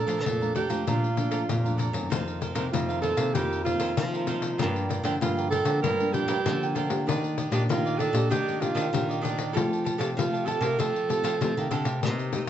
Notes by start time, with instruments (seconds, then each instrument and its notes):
Already playing: nylon-string guitar A#2 F3 A3 D4, alto saxophone A4
0.07 nylon-string guitar F3, cavaquinho A4 D5 F5 A#5, pandeiro
0.25 nylon-string guitar F2 A#2, pandeiro
0.41 nylon-string guitar F3 A3 D4, cavaquinho D5 F5 A#5, pandeiro
0.55 alto saxophone G4, cavaquinho A4 D5 F5 A#5, pandeiro
0.69 nylon-string guitar F3 A3 D4, cavaquinho D5 F5 A#5, pandeiro
0.87 nylon-string guitar A#2 F3 A3 D4, alto saxophone F4, cavaquinho A4 D5 F5 A#5, pandeiro
1.04 pandeiro
1.16 nylon-string guitar F3 A3 D4, cavaquinho A4 D5 F5 A#5, pandeiro
1.31 cavaquinho A4 D5 F5 A#5, pandeiro
1.49 nylon-string guitar F2 A#2, pandeiro
1.64 nylon-string guitar F3 A3 D4, cavaquinho D5 F5 A#5, pandeiro
1.77 cavaquinho A4 D5 F5 A#5, pandeiro
1.93 nylon-string guitar F#2 D#3 A#3 C4, pandeiro
2.10 nylon-string guitar F2, cavaquinho D#4 A#4 C5 F5, pandeiro
2.28 pandeiro
2.41 cavaquinho D#4 A#4 C5 F5, pandeiro
2.55 nylon-string guitar C3 D#3 A#3 C4, cavaquinho D#4 A#4 C5 F5, pandeiro
2.72 nylon-string guitar F2 C3 D#3 A#3 C4, alto saxophone F4, pandeiro
2.89 cavaquinho A#4 C5 F5, pandeiro
3.01 cavaquinho D#4 A#4 C5 F5, alto saxophone A4, pandeiro
3.17 nylon-string guitar C3 D#3 A#3 C4, cavaquinho A#4 C5 F5, pandeiro
3.34 nylon-string guitar F2, cavaquinho D#4 A#4 C5 F5, alto saxophone G4, pandeiro
3.53 pandeiro
3.64 nylon-string guitar D#3 A#3 C4, cavaquinho D#4 A#4 C5 F5, alto saxophone F4, pandeiro
3.80 nylon-string guitar F2, cavaquinho D#4 A#4 C5 F5, pandeiro
3.97 nylon-string guitar C3 D#3 F3 A#3 C4, pandeiro
4.14 cavaquinho A#4 C5 F5, pandeiro
4.27 cavaquinho D#4 A#4 C5 F5, pandeiro
4.42 pandeiro
4.58 nylon-string guitar G2 F3 A#3 D4, cavaquinho F4 A#4 D5 G5, pandeiro
4.76 pandeiro
4.89 cavaquinho F4 A#4 D5 G5, pandeiro
5.03 nylon-string guitar D3 F3 A#3 D4, cavaquinho F4 A#4 D5 G5, pandeiro
5.21 nylon-string guitar G2 D3 F3 A#3 D4, alto saxophone F4, pandeiro
5.37 cavaquinho A#4 D5 G5, pandeiro
5.50 cavaquinho F4 A#4 D5 G5, alto saxophone A4, pandeiro
5.65 nylon-string guitar D3 F3 A#3 D4, cavaquinho A#4 D5 G5, pandeiro
5.82 nylon-string guitar G2, cavaquinho F4 A#4 D5 G5, alto saxophone A#4, pandeiro
6.00 nylon-string guitar F3 A#3 D4, pandeiro
6.13 nylon-string guitar F3 A#3 D4, cavaquinho F4 A#4 D5 G5, alto saxophone G4, pandeiro
6.28 nylon-string guitar G2, cavaquinho F4 A#4 D5 G5, pandeiro
6.46 nylon-string guitar D3 F3 A#3 D4, pandeiro
6.63 cavaquinho A#4 D5 G5, pandeiro
6.75 cavaquinho F4 A#4 D5 G5, pandeiro
6.90 nylon-string guitar A#3 D4 G4, pandeiro
7.07 nylon-string guitar D#3, cavaquinho D4 G4 D5 D#5, pandeiro
7.24 pandeiro
7.38 cavaquinho D4 G4 D5 D#5, pandeiro
7.51 nylon-string guitar A#2 A#3 D4 G4, cavaquinho D4 G4 D5 D#5, pandeiro
7.69 nylon-string guitar A#2 D#3, alto saxophone F4, pandeiro
7.85 cavaquinho G4 D5 D#5, pandeiro
7.99 cavaquinho D4 G4 D5 D#5, alto saxophone A4, pandeiro
8.13 nylon-string guitar A#2 A#3 D4 G4, cavaquinho G4 D5 D#5, pandeiro
8.30 nylon-string guitar D#3, cavaquinho D4 G4 D5 D#5, alto saxophone G4, pandeiro
8.48 nylon-string guitar A#3 D4 G4, pandeiro
8.60 nylon-string guitar A#3 D4 G4, cavaquinho D4 G4 D5 D#5, alto saxophone F4, pandeiro
8.74 nylon-string guitar D#3, cavaquinho D4 G4 D5 D#5, pandeiro
8.93 nylon-string guitar A#2 D#3 A#3 D4 G4, pandeiro
9.09 cavaquinho G4 D5 D#5, pandeiro
9.21 cavaquinho D4 G4 D5 D#5, pandeiro
9.39 pandeiro
9.53 nylon-string guitar F3 A3 C4 G4, cavaquinho G4 A4 F5 A5, pandeiro
9.73 pandeiro
9.84 cavaquinho G4 A4 F5 A5, pandeiro
9.98 nylon-string guitar C3 A3 C4 G4, cavaquinho G4 A4 F5 A5, pandeiro
10.17 nylon-string guitar C3 F3 A3 C4 G4, alto saxophone F4, pandeiro
10.33 cavaquinho G4 F5 A5, pandeiro
10.46 cavaquinho G4 A4 F5 A5, alto saxophone A4, pandeiro
10.61 nylon-string guitar C3 A3 C4 G4, cavaquinho G4 F5 A5, alto saxophone A#4, pandeiro
10.78 nylon-string guitar F3, cavaquinho G4 A4 F5 A5, alto saxophone A4, pandeiro
10.96 pandeiro
11.09 nylon-string guitar A3 C4 G4, cavaquinho G4 A4 F5 A5, pandeiro
11.23 nylon-string guitar F3, cavaquinho G4 A4 F5 A5, pandeiro
11.41 nylon-string guitar C3 F3 A3 C4 G4, pandeiro
11.57 nylon-string guitar D#3, cavaquinho G4 F5 A5, pandeiro
11.71 nylon-string guitar D3, cavaquinho G4 A4 F5 A5, pandeiro
11.85 nylon-string guitar C3, pandeiro
12.03 nylon-string guitar C3 A#3 D#4 G4, cavaquinho D#4 A#4 C5 D#5, pandeiro
12.19 pandeiro
12.32 nylon-string guitar A#3 D#4 G4, cavaquinho D#4 A#4 C5 D#5, pandeiro